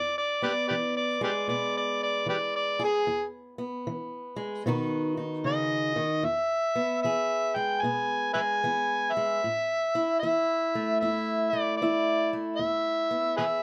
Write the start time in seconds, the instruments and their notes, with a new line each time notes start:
Already playing: steel-string acoustic guitar E2 B3, harmonica D5
0.18 harmonica D5
0.42 steel-string acoustic guitar B3, harmonica G4 B4 D5
0.68 steel-string acoustic guitar E3, harmonica G4 B4 D5
0.97 harmonica D5
1.21 steel-string acoustic guitar G#3, harmonica G4 B4 D5
1.48 steel-string acoustic guitar B2 B3, harmonica D5
1.77 harmonica D5
2.03 harmonica D5
2.26 steel-string acoustic guitar E3, harmonica G4 B4 D5
2.56 harmonica D5
2.79 steel-string acoustic guitar G#4
2.84 harmonica G#4
3.07 steel-string acoustic guitar E2
3.58 steel-string acoustic guitar B3
3.87 steel-string acoustic guitar E3
4.36 steel-string acoustic guitar G#3
4.66 steel-string acoustic guitar B2 D#3 B3 D#4 F#4
5.17 steel-string acoustic guitar D#4
5.44 steel-string acoustic guitar C#3, harmonica D#5
5.96 steel-string acoustic guitar D#3
6.23 steel-string acoustic guitar E2, harmonica E5
6.75 steel-string acoustic guitar B3
7.03 steel-string acoustic guitar E3 G#4, harmonica E5
7.56 steel-string acoustic guitar G#3, harmonica G5
7.82 steel-string acoustic guitar B2 B3, harmonica G#5
8.34 steel-string acoustic guitar G#3, harmonica B4 E5 G#5
8.64 steel-string acoustic guitar E3 B3
9.12 harmonica E5
9.17 steel-string acoustic guitar G#3
9.44 steel-string acoustic guitar A2
9.95 steel-string acoustic guitar E4
10.19 steel-string acoustic guitar E3, harmonica E5
10.23 steel-string acoustic guitar E4
10.75 steel-string acoustic guitar A3
11.00 steel-string acoustic guitar E2 E4, harmonica E5
11.49 steel-string acoustic guitar A3, harmonica D5
11.77 harmonica D5
11.82 steel-string acoustic guitar E3 E4
12.33 steel-string acoustic guitar A3
12.56 steel-string acoustic guitar E2, harmonica E5
13.11 steel-string acoustic guitar B3
13.37 steel-string acoustic guitar E3 G#4, harmonica G#4 B4 E5